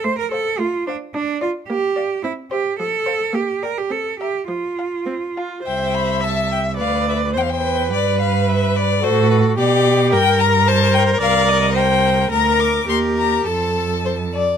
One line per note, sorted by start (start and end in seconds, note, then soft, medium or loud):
0.04 0.48 A3 medium
0.04 0.18 C5 medium
0.18 0.31 A#4 medium
0.32 0.61 A4 medium
0.32 0.53 C5 medium
0.32 0.54 F5 soft
0.59 1.03 A3 medium
0.59 0.87 F4 medium
0.87 0.95 D4 medium
0.87 1.08 C5 medium
0.87 1.09 F5 medium
1.14 1.58 D4 medium
1.14 1.41 D4 medium
1.42 1.50 F4 medium
1.42 1.62 D5 medium
1.42 1.63 F5 medium
1.68 2.13 A#3 medium
1.68 2.23 G4 medium
1.97 2.17 D5 medium
1.97 2.18 F5 medium
2.24 2.68 C4 medium
2.24 2.32 E4 medium
2.51 2.78 G4 medium
2.51 2.72 C5 medium
2.51 2.73 E5 medium
2.79 3.23 F3 medium
2.79 3.36 A4 medium
3.07 3.28 C5 medium
3.07 3.28 F5 medium
3.33 3.79 A#3 medium
3.33 3.65 G4 medium
3.63 3.79 A#4 medium
3.63 3.84 D5 soft
3.63 3.85 G5 soft
3.78 3.93 G4 medium
3.90 4.37 C4 soft
3.90 4.19 A4 medium
4.20 4.48 G4 medium
4.20 4.43 E5 soft
4.20 4.42 A#5 soft
4.48 4.95 F3 medium
4.48 5.35 F4 medium
4.79 5.01 F5 soft
4.79 5.01 A5 soft
5.06 5.14 C4 soft
5.36 5.63 F4 soft
5.36 5.59 F5 soft
5.36 5.59 A5 soft
5.63 6.81 C2 medium
5.63 6.22 C5 medium
5.63 5.96 G5 medium
5.67 6.76 E5 medium
5.94 6.26 B5 medium
6.21 6.76 E5 medium
6.21 6.52 A5 medium
6.52 6.60 G5 medium
6.77 7.37 D2 medium
6.77 7.31 B4 medium
6.77 7.32 D5 medium
6.77 7.08 F5 medium
7.09 7.17 E5 medium
7.33 7.92 E2 medium
7.33 7.41 C5 medium
7.33 7.88 C5 medium
7.37 7.44 G5 medium
7.43 7.51 F5 medium
7.50 7.91 G5 medium
7.63 8.99 B4 medium
7.91 9.05 G2 medium
7.91 8.99 B4 medium
7.91 8.19 D5 medium
8.21 8.50 F5 medium
8.49 8.78 E5 medium
8.76 9.05 D5 loud
9.03 9.58 A2 medium
9.03 9.55 F#4 medium
9.03 9.57 A4 medium
9.03 9.31 C5 loud
9.31 9.39 B4 medium
9.58 10.14 B2 medium
9.58 10.14 G4 medium
9.58 10.09 G4 medium
9.58 10.12 D5 loud
10.12 11.21 G2 medium
10.12 12.27 A#4 medium
10.12 10.69 A#4 medium
10.12 10.42 G5 loud
10.40 10.69 A#5 loud
10.68 11.20 C5 medium
10.68 10.94 A5 loud
10.95 11.03 G5 loud
11.21 12.29 C2 medium
11.21 11.73 D5 medium
11.21 11.50 F5 loud
11.49 11.78 D#5 medium
11.74 12.29 C5 medium
11.74 12.31 G5 loud
12.31 12.84 D2 medium
12.31 12.87 A#4 medium
12.31 12.84 A#4 medium
12.31 12.62 A#5 medium
12.60 12.88 D6 medium
12.87 13.45 D#2 medium
12.87 13.48 G4 medium
12.87 13.47 A#4 medium
12.87 12.97 C6 medium
13.18 13.46 A#5 medium
13.45 14.42 F2 medium
13.45 13.99 A4 medium
13.45 14.35 A4 medium
13.45 14.34 A5 medium
14.05 14.13 C5 medium
14.35 14.57 D5 medium